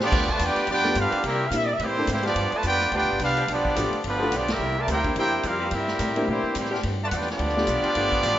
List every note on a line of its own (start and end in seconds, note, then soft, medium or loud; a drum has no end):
0.00 0.11 A1 medium
0.00 0.08 F3 loud
0.00 0.27 F3 loud
0.00 0.08 B3 medium
0.00 0.27 B3 medium
0.00 0.28 B3 medium
0.00 0.08 D4 medium
0.00 0.27 D4 loud
0.00 0.28 F4 medium
0.00 0.08 G4 loud
0.00 0.28 G4 loud
0.00 0.27 D5 loud
0.00 snare medium
0.12 0.39 D2 medium
0.12 0.30 G2 medium
0.12 0.30 F3 medium
0.12 0.30 B3 medium
0.12 0.31 D4 medium
0.12 kick loud
0.12 snare medium
0.12 crash loud
0.29 0.40 A3 medium
0.29 0.41 F4 medium
0.29 0.41 B4 medium
0.29 0.41 D5 medium
0.29 0.41 A5 loud
0.29 kick medium
0.39 0.55 E2 loud
0.39 0.58 G2 medium
0.39 0.58 F3 medium
0.39 0.68 B3 medium
0.39 0.58 B3 medium
0.39 0.68 D4 loud
0.39 0.58 D4 medium
0.39 0.68 G4 loud
0.39 kick soft
0.39 hi-hat pedal medium
0.39 ride medium
0.43 0.69 F4 medium
0.43 0.69 B4 medium
0.43 0.70 D5 medium
0.43 0.70 G5 loud
0.56 muted upright bass stroke soft
0.56 snare soft
0.56 ride medium
0.67 0.95 F2 medium
0.67 0.86 G2 medium
0.67 0.86 F3 medium
0.67 0.95 B3 loud
0.67 0.86 B3 medium
0.67 0.95 D4 loud
0.67 0.87 D4 medium
0.67 0.95 F4 medium
0.67 0.95 G4 loud
0.67 0.95 D5 loud
0.67 0.95 G5 loud
0.67 kick soft
0.67 ride medium
0.71 0.95 B4 loud
0.84 0.94 A3 medium
0.84 0.95 B3 medium
0.84 0.95 D4 medium
0.84 0.95 F4 medium
0.84 0.95 G4 medium
0.84 snare medium
0.95 1.11 G2 loud
0.95 1.14 G2 medium
0.95 1.14 F3 medium
0.95 1.24 B3 medium
0.95 1.14 B3 medium
0.95 1.24 D4 medium
0.95 1.15 D4 medium
0.95 1.24 F4 medium
0.95 1.25 G4 medium
0.95 1.25 B4 medium
0.95 kick soft
0.95 hi-hat pedal medium
0.95 ride medium
0.99 1.26 D4 medium
0.99 1.25 F5 loud
1.11 1.19 E3 medium
1.11 1.19 A#3 medium
1.11 1.19 C4 medium
1.11 1.19 G4 loud
1.11 muted upright bass stroke soft
1.11 ride medium
1.24 1.51 C3 medium
1.24 1.42 C3 soft
1.24 1.42 G3 medium
1.24 1.44 G3 loud
1.24 1.44 A#3 loud
1.24 1.42 A#3 medium
1.24 1.45 C4 medium
1.24 1.45 E4 loud
1.24 1.43 E4 medium
1.24 1.45 A#4 loud
1.24 1.45 E5 medium
1.24 kick soft
1.24 ride medium
1.28 1.45 G4 medium
1.48 1.78 A#2 loud
1.48 1.54 F5 medium
1.48 hi-hat pedal medium
1.48 ride medium
1.52 1.70 C3 medium
1.52 1.70 G3 medium
1.52 1.66 A#3 medium
1.52 1.70 A#3 medium
1.52 1.66 C4 soft
1.52 1.67 D4 medium
1.52 1.67 E4 medium
1.52 1.71 E4 medium
1.52 1.67 G4 medium
1.52 kick soft
1.56 1.65 E5 loud
1.66 1.73 D5 medium
1.73 1.80 E5 medium
1.79 2.07 A2 medium
1.79 1.98 C3 soft
1.79 2.09 E3 medium
1.79 1.98 G3 medium
1.79 2.09 G3 medium
1.79 1.98 A#3 medium
1.79 2.09 C4 medium
1.79 1.99 E4 soft
1.79 2.09 E4 medium
1.79 kick soft
1.79 ride medium
1.83 2.09 A#3 medium
1.83 2.10 G4 loud
1.83 2.10 C5 loud
1.97 2.07 A#3 medium
1.97 2.07 C4 medium
1.97 2.07 D4 medium
1.97 2.07 E4 medium
1.97 2.08 A4 medium
2.07 2.35 G#2 medium
2.07 2.26 C3 medium
2.07 2.25 E3 medium
2.07 2.26 G3 medium
2.07 2.26 A#3 medium
2.07 2.25 A#3 medium
2.07 2.25 C4 medium
2.07 2.26 E4 medium
2.07 2.25 E4 medium
2.07 2.25 G4 medium
2.07 kick soft
2.07 hi-hat pedal medium
2.07 ride medium
2.11 2.25 G3 medium
2.11 2.25 C5 loud
2.17 snare soft
2.23 2.32 F3 loud
2.23 2.51 F3 medium
2.23 2.31 B3 medium
2.23 2.51 B3 medium
2.23 2.52 B3 medium
2.23 2.32 D4 medium
2.23 2.52 D4 medium
2.23 2.51 F4 medium
2.23 2.32 G4 loud
2.23 2.52 G4 medium
2.23 2.51 D5 loud
2.23 snare medium
2.23 ride medium
2.35 2.53 G2 medium
2.35 2.51 G2 medium
2.35 2.53 F3 soft
2.35 2.54 B3 medium
2.35 2.54 D4 medium
2.35 kick soft
2.35 ride medium
2.52 2.65 A3 medium
2.52 2.65 F4 medium
2.52 2.65 B4 loud
2.52 2.65 D5 medium
2.52 2.65 A5 loud
2.52 muted upright bass stroke soft
2.52 ride medium
2.63 2.91 F2 loud
2.63 2.81 G2 medium
2.63 2.82 F3 medium
2.63 2.91 B3 loud
2.63 2.82 B3 medium
2.63 2.90 D4 medium
2.63 2.82 D4 medium
2.63 2.91 F4 medium
2.63 2.91 G4 loud
2.63 kick soft
2.63 hi-hat pedal medium
2.63 ride medium
2.67 2.91 B4 loud
2.67 2.91 D5 medium
2.67 2.91 G5 loud
2.80 snare soft
2.80 ride medium
2.92 3.03 D2 medium
2.92 3.09 G2 soft
2.92 3.10 F3 soft
2.92 3.19 B3 loud
2.92 3.10 B3 medium
2.92 3.19 D4 loud
2.92 3.11 D4 medium
2.92 3.19 F4 medium
2.92 3.19 G4 medium
2.92 3.19 B4 medium
2.92 3.19 D5 loud
2.92 3.19 G5 loud
2.92 kick soft
2.92 ride medium
3.02 3.10 B1 medium
3.10 3.19 G1 medium
3.19 3.47 C2 medium
3.19 3.38 G2 medium
3.19 3.38 F3 medium
3.19 3.38 B3 medium
3.19 3.47 B3 medium
3.19 3.47 D4 medium
3.19 3.38 D4 medium
3.19 3.47 F4 medium
3.19 3.47 G4 medium
3.19 3.47 B4 medium
3.19 3.47 F5 loud
3.19 kick soft
3.19 hi-hat pedal medium
3.19 ride medium
3.37 3.44 F3 loud
3.37 3.44 B3 medium
3.37 3.44 D4 medium
3.37 3.45 G4 loud
3.37 ride medium
3.48 3.75 B1 medium
3.48 3.65 G2 medium
3.48 3.66 F3 medium
3.48 4.01 F3 medium
3.48 3.66 B3 medium
3.48 4.01 B3 medium
3.48 4.01 D4 loud
3.48 3.67 D4 medium
3.48 4.02 F4 medium
3.48 4.01 G4 medium
3.48 4.01 D5 loud
3.48 kick soft
3.48 ride medium
3.65 kick medium
3.76 3.91 A1 loud
3.76 3.94 G2 medium
3.76 3.94 F3 medium
3.76 3.91 A3 medium
3.76 3.91 B3 medium
3.76 3.94 B3 medium
3.76 3.91 D4 medium
3.76 3.95 D4 medium
3.76 3.91 F4 medium
3.76 3.92 G4 medium
3.76 kick soft
3.76 hi-hat pedal medium
3.76 ride loud
3.92 muted upright bass stroke soft
3.92 ride soft
4.04 4.31 G1 medium
4.04 4.22 G2 soft
4.04 4.33 D3 medium
4.04 4.22 F3 medium
4.04 4.33 F3 medium
4.04 4.33 G3 medium
4.04 4.22 B3 medium
4.04 4.33 B3 medium
4.04 4.23 D4 medium
4.04 4.34 D4 medium
4.04 4.33 F4 medium
4.04 4.33 B4 loud
4.04 kick soft
4.04 ride medium
4.18 4.27 F3 loud
4.18 4.31 A3 medium
4.18 4.27 B3 medium
4.18 4.31 B3 medium
4.18 4.27 D4 medium
4.18 4.26 G4 medium
4.22 4.31 D4 medium
4.22 4.32 F4 medium
4.22 4.32 A4 medium
4.32 4.58 B1 medium
4.32 4.50 G2 medium
4.32 4.50 F3 medium
4.32 4.49 F3 medium
4.32 4.50 B3 medium
4.32 4.50 D4 medium
4.32 4.51 D4 medium
4.32 4.50 F4 medium
4.32 4.50 G4 medium
4.32 4.50 D5 loud
4.32 kick soft
4.32 hi-hat pedal medium
4.32 ride medium
4.48 4.78 G3 medium
4.48 4.78 A#3 medium
4.48 4.78 C4 medium
4.48 4.78 E4 medium
4.48 4.78 G4 medium
4.48 4.78 A#4 medium
4.48 4.78 E5 loud
4.48 snare loud
4.48 ride medium
4.59 4.86 C2 medium
4.59 4.78 C3 medium
4.59 4.78 G3 medium
4.59 4.78 A#3 medium
4.63 4.79 E4 medium
4.78 4.89 A3 medium
4.78 4.89 F4 medium
4.78 4.89 A#4 medium
4.78 4.89 D5 medium
4.78 4.89 A5 medium
4.87 5.15 D2 loud
4.87 5.06 C3 medium
4.87 4.99 E3 medium
4.87 5.06 G3 medium
4.87 4.99 A#3 medium
4.87 5.06 A#3 medium
4.87 5.15 A#3 medium
4.87 4.98 C4 medium
4.87 5.15 E4 medium
4.87 5.06 E4 medium
4.87 5.15 E4 medium
4.87 4.99 G4 medium
4.87 5.15 G4 medium
4.87 5.15 A#4 medium
4.87 5.15 C5 medium
4.87 5.15 G5 loud
4.87 kick soft
4.87 hi-hat pedal medium
4.87 ride medium
5.04 5.41 A#3 medium
5.04 5.42 C4 medium
5.04 5.42 D4 medium
5.04 5.42 E4 medium
5.04 5.42 G4 medium
5.04 kick medium
5.04 ride medium
5.15 5.43 E2 medium
5.15 5.33 C3 soft
5.15 5.34 G3 medium
5.15 5.42 A#3 medium
5.15 5.35 A#3 medium
5.15 5.43 E4 medium
5.15 5.43 E4 loud
5.15 5.35 E4 medium
5.15 5.42 G4 medium
5.15 5.43 A#4 medium
5.15 5.43 C5 medium
5.15 5.43 G5 loud
5.15 kick soft
5.15 ride medium
5.43 5.71 F2 medium
5.43 5.61 C3 medium
5.43 5.62 G3 medium
5.43 5.72 G3 medium
5.43 5.62 A#3 medium
5.43 5.72 A#3 medium
5.43 5.72 C4 medium
5.43 5.62 E4 medium
5.43 5.73 F4 medium
5.43 5.72 G4 medium
5.43 5.72 A#4 medium
5.43 5.72 F5 loud
5.43 kick soft
5.43 hi-hat pedal medium
5.43 ride medium
5.59 5.67 E3 loud
5.59 5.67 A#3 loud
5.59 5.67 C4 medium
5.59 5.68 G4 loud
5.71 5.99 G2 medium
5.71 5.89 C3 soft
5.71 5.90 G3 medium
5.71 6.28 G3 loud
5.71 5.90 A#3 medium
5.71 6.29 A#3 medium
5.71 6.29 C4 medium
5.71 6.29 E4 medium
5.71 5.90 E4 medium
5.71 6.28 G4 medium
5.71 6.28 A#4 medium
5.71 6.29 E5 loud
5.71 kick soft
5.71 ride medium
5.88 snare medium
5.99 6.27 A2 loud
5.99 6.17 C3 medium
5.99 6.18 G3 medium
5.99 6.18 A#3 medium
5.99 6.18 E4 medium
5.99 kick soft
5.99 hi-hat pedal medium
5.99 ride medium
6.16 6.53 A#3 medium
6.16 6.53 C4 medium
6.16 6.54 D4 medium
6.16 6.54 E4 medium
6.16 6.54 G4 medium
6.16 ride medium
6.27 6.43 A#2 medium
6.27 6.45 C3 medium
6.27 6.55 E3 medium
6.27 6.46 G3 medium
6.27 6.55 G3 medium
6.27 6.46 A#3 soft
6.27 6.55 A#3 medium
6.27 6.55 C4 medium
6.27 6.46 E4 medium
6.27 6.55 E4 medium
6.27 6.55 G4 medium
6.27 6.55 C5 medium
6.27 kick soft
6.43 muted upright bass stroke soft
6.55 6.83 A2 medium
6.55 6.74 C3 medium
6.55 6.72 E3 medium
6.55 6.74 G3 medium
6.55 6.72 G3 medium
6.55 6.74 A#3 medium
6.55 6.72 A#3 medium
6.55 6.72 C4 medium
6.55 6.75 E4 medium
6.55 6.73 E4 medium
6.55 6.73 G4 medium
6.55 6.72 C5 medium
6.55 kick soft
6.55 hi-hat pedal medium
6.55 ride medium
6.65 snare soft
6.71 6.79 F3 loud
6.71 6.79 B3 medium
6.71 6.79 D4 loud
6.71 6.79 G4 loud
6.71 snare medium
6.83 7.11 G2 medium
6.83 7.01 G2 medium
6.83 7.02 F3 medium
6.83 7.02 B3 medium
6.83 7.03 D4 medium
6.83 kick soft
6.83 ride medium
7.03 7.06 A3 medium
7.03 7.07 F4 medium
7.03 7.07 B4 medium
7.03 7.07 D5 medium
7.03 7.07 A5 loud
7.10 7.39 E2 loud
7.10 7.29 G2 medium
7.10 7.30 F3 medium
7.10 7.30 B3 medium
7.10 7.12 F#5 medium
7.10 kick soft
7.10 hi-hat pedal medium
7.10 ride loud
7.14 7.29 B3 medium
7.14 7.30 D4 medium
7.14 7.29 F4 medium
7.14 7.30 G4 medium
7.14 7.30 B4 medium
7.14 7.29 D5 medium
7.14 7.30 G5 loud
7.21 snare soft
7.28 8.39 F3 medium
7.28 8.39 B3 loud
7.28 8.39 B3 medium
7.28 8.39 D4 medium
7.28 8.39 F4 loud
7.28 8.39 G4 medium
7.28 8.39 D5 loud
7.28 snare medium
7.28 ride soft
7.39 7.66 D2 medium
7.39 7.57 G2 medium
7.39 7.58 F3 soft
7.39 7.58 B3 soft
7.39 7.59 D4 soft
7.39 kick soft
7.39 ride medium
7.49 snare soft
7.57 7.67 A3 medium
7.57 7.67 B3 medium
7.57 7.67 D4 medium
7.57 7.67 F4 medium
7.57 7.67 G4 medium
7.57 snare medium
7.67 7.83 B1 medium
7.67 7.85 G2 medium
7.67 7.86 F3 medium
7.67 7.86 B3 medium
7.67 7.86 D4 medium
7.67 kick soft
7.67 hi-hat pedal medium
7.67 ride medium
7.83 7.91 F3 loud
7.83 7.91 B3 medium
7.83 7.91 D4 medium
7.83 7.91 G4 loud
7.83 muted upright bass stroke soft
7.83 ride medium
7.95 8.22 G1 medium
7.95 8.13 G2 medium
7.95 8.14 F3 medium
7.95 8.11 A3 medium
7.95 8.11 B3 medium
7.95 8.14 B3 medium
7.95 8.11 D4 medium
7.95 8.14 D4 medium
7.95 8.11 F4 medium
7.95 8.11 G4 medium
7.95 kick soft
7.95 ride medium
8.12 kick medium
8.23 8.39 A1 medium
8.23 8.39 G2 medium
8.23 8.39 F3 medium
8.23 8.39 B3 medium
8.23 8.39 D4 medium
8.23 kick soft
8.23 snare soft
8.23 hi-hat pedal medium
8.23 ride medium